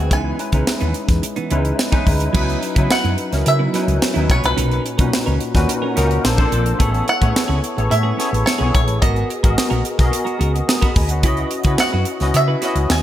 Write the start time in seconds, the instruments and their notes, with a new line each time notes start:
Already playing: tine electric piano G#3 C4 E4 F#4 B4, clean electric guitar G#4
0.00 fretless electric bass D2, clean electric guitar C4 F#4
0.10 fretless electric bass C#2, clean electric guitar E3 B3 D#4, tine electric piano G#3 C#4 D#4 E4 B4, five-string banjo G#5, kick, closed hi-hat
0.39 tine electric piano G#3 C#4 D#4 E4 B4, muted clean electric guitar stroke, closed hi-hat
0.52 fretless electric bass C#2, clean electric guitar E3 B3 D#4, tine electric piano G#3 C#4 D#4 E4 B4, kick, closed hi-hat
0.67 muted clean electric guitar stroke, snare
0.80 fretless electric bass D#2, clean electric guitar E3 B3 D#4, closed hi-hat
0.94 muted clean electric guitar stroke, closed hi-hat
1.08 fretless electric bass E2, muted clean electric guitar stroke, kick, snare, closed hi-hat
1.22 muted clean electric guitar stroke, closed hi-hat
1.36 clean electric guitar E3 B3 D#4, closed hi-hat
1.50 fretless electric bass C#2, clean electric guitar E3 B3 D#4, tine electric piano G#3 C#4 D#4 E4 B4, closed hi-hat
1.64 muted clean electric guitar stroke, closed hi-hat
1.78 muted clean electric guitar stroke, snare
1.92 clean electric guitar E3 B3 D#4, tine electric piano G#3 C#4 D#4 E4 B4, kick, closed hi-hat
2.07 fretless electric bass D2, muted clean electric guitar stroke, kick, open hi-hat
2.20 muted clean electric guitar stroke, closed hi-hat
2.33 fretless electric bass C#2, clean electric guitar F#3 B3 E4, tine electric piano F#3 C#4 D#4 E4 B4, kick, crash
2.50 closed hi-hat
2.62 muted clean electric guitar stroke, closed hi-hat
2.75 fretless electric bass C#3, clean electric guitar F#3 B3 E4, tine electric piano F#3 C#4 D#4 E4 B4, kick, closed hi-hat
2.90 five-string banjo F#5, muted clean electric guitar stroke, snare
3.04 fretless electric bass F#2, clean electric guitar F#3 B3 E4, closed hi-hat
3.18 muted clean electric guitar stroke, closed hi-hat
3.32 fretless electric bass C#2, tine electric piano F#3 C#4 D#4 E4 A#4, muted clean electric guitar stroke, snare, closed hi-hat
3.45 fretless electric bass C#3, five-string banjo E5, muted clean electric guitar stroke, closed hi-hat
3.59 clean electric guitar F#3 B3 E4
3.73 clean electric guitar F#3 B3 E4, tine electric piano F#3 C#4 D#4 E4 B4, snare, closed hi-hat
3.88 fretless electric bass C#2, muted clean electric guitar stroke, closed hi-hat
4.01 muted clean electric guitar stroke, snare
4.14 fretless electric bass D#2, clean electric guitar F#3 B3 E4, tine electric piano F#3 C#4 D#4 E4 B4, closed hi-hat
4.29 fretless electric bass B1, tine electric piano A#2 C#4 D#4 F#4 B4, five-string banjo C#5, muted clean electric guitar stroke, kick, closed hi-hat
4.43 fretless electric bass C2, five-string banjo B4, muted clean electric guitar stroke, closed hi-hat
4.56 fretless electric bass B1, clean electric guitar C#4 D#4 A#4, closed hi-hat
4.71 closed hi-hat
4.84 muted clean electric guitar stroke, closed hi-hat
4.98 fretless electric bass B1, tine electric piano A#2 C#4 D#4 F#4 B4, clean electric guitar C#4 D#4 A#4, kick, closed hi-hat
5.12 muted clean electric guitar stroke, snare
5.26 fretless electric bass C#2, clean electric guitar C#4 D#4 A#4, closed hi-hat
5.41 muted clean electric guitar stroke, closed hi-hat
5.54 fretless electric bass D#2, tine electric piano A#2 C#4 D#4 F#4 B4, muted clean electric guitar stroke, kick, snare, closed hi-hat
5.68 muted clean electric guitar stroke, closed hi-hat
5.82 clean electric guitar C#4 D#4 A#4
5.96 fretless electric bass C#2, tine electric piano A#3 C#4 D#4 F#4 A#4, clean electric guitar C#4 D#4 A#4, snare, closed hi-hat
6.10 muted clean electric guitar stroke, closed hi-hat
6.23 fretless electric bass A#1, tine electric piano A#3 D4 F4 A4 C5, muted clean electric guitar stroke, snare
6.37 tine electric piano A#3 D4 F4 A4 C5, clean electric guitar C4 D4 A4, kick, closed hi-hat
6.52 fretless electric bass A#1, clean electric guitar C4 D4 A4, closed hi-hat
6.66 muted clean electric guitar stroke, closed hi-hat
6.79 fretless electric bass A1, clean electric guitar B3 C#4 G#4, tine electric piano B3 E4 G#4 A4 C#5, kick, closed hi-hat
6.94 closed hi-hat
7.07 five-string banjo F#5, muted clean electric guitar stroke, closed hi-hat
7.21 fretless electric bass A2, tine electric piano B3 E4 G#4 A4 C#5, clean electric guitar B3 C#4 G#4, kick, closed hi-hat
7.34 muted clean electric guitar stroke, snare
7.48 fretless electric bass C#2, clean electric guitar B3 C#4 G#4
7.62 muted clean electric guitar stroke, closed hi-hat
7.77 fretless electric bass A1, tine electric piano B3 E4 G#4 A4 C#5, muted clean electric guitar stroke, closed hi-hat
7.90 fretless electric bass A2, five-string banjo E5, muted clean electric guitar stroke, closed hi-hat
8.03 clean electric guitar B3 C#4 G#4
8.17 clean electric guitar B3 C#4 G#4, tine electric piano B3 E4 G#4 A4 C#5, snare, closed hi-hat
8.31 fretless electric bass A1, muted clean electric guitar stroke, closed hi-hat
8.46 five-string banjo C#5, muted clean electric guitar stroke, snare
8.58 fretless electric bass B1, clean electric guitar B3 C#4 G#4, tine electric piano B3 E4 G#4 A4 C#5
8.73 fretless electric bass A#1, five-string banjo C#5, muted clean electric guitar stroke, kick, closed hi-hat
8.88 fretless electric bass A1, muted clean electric guitar stroke, closed hi-hat
9.02 fretless electric bass G#1, clean electric guitar B3 F#4 A#4, tine electric piano B3 F#4 G#4 A#4 D#5, five-string banjo D#5, kick, closed hi-hat
9.16 closed hi-hat
9.30 muted clean electric guitar stroke, closed hi-hat
9.43 fretless electric bass G#1, tine electric piano B3 F#4 G#4 A#4 D#5, clean electric guitar B3 F#4 A#4, kick, closed hi-hat
9.56 muted clean electric guitar stroke, snare
9.70 fretless electric bass A#1, clean electric guitar B3 F#4 A#4, closed hi-hat
9.84 muted clean electric guitar stroke, closed hi-hat
9.98 fretless electric bass B1, tine electric piano B3 F#4 G#4 A#4 D#5, muted clean electric guitar stroke, kick, snare, closed hi-hat
10.11 muted clean electric guitar stroke, closed hi-hat
10.25 clean electric guitar B3 F#4 A#4, closed hi-hat
10.39 fretless electric bass C#2, clean electric guitar B3 F#4 A#4, closed hi-hat
10.53 muted clean electric guitar stroke, closed hi-hat
10.67 tine electric piano A#5 D#6, muted clean electric guitar stroke, snare
10.82 clean electric guitar B3 F#4 A#4, tine electric piano F#5 B5, kick, closed hi-hat
10.96 fretless electric bass D2, tine electric piano D#5 G#5, muted clean electric guitar stroke, kick, open hi-hat
11.09 tine electric piano C#5 F#5, muted clean electric guitar stroke, closed hi-hat
11.23 fretless electric bass C#2, tine electric piano C#4 E4 F#4 B4 D#5, clean electric guitar E4 F#4 B4, kick, closed hi-hat
11.37 closed hi-hat
11.51 muted clean electric guitar stroke, closed hi-hat
11.63 fretless electric bass C#3, tine electric piano C#4 E4 F#4 B4 D#5, clean electric guitar E4 F#4 B4, kick, closed hi-hat
11.78 five-string banjo F#5, muted clean electric guitar stroke, snare
11.93 fretless electric bass F#2, clean electric guitar E4 F#4 B4
12.05 muted clean electric guitar stroke, closed hi-hat
12.20 fretless electric bass C#2, tine electric piano C#4 E4 F#4 B4 D#5, muted clean electric guitar stroke, snare, closed hi-hat
12.34 fretless electric bass C#3, five-string banjo E5, muted clean electric guitar stroke, closed hi-hat
12.48 clean electric guitar E4 F#4 B4
12.61 tine electric piano C#4 E4 F#4 B4 D#5, clean electric guitar E4 F#4 B4, snare, closed hi-hat
12.75 fretless electric bass C#2, closed hi-hat
12.90 fretless electric bass D#2, five-string banjo G#5, muted clean electric guitar stroke, snare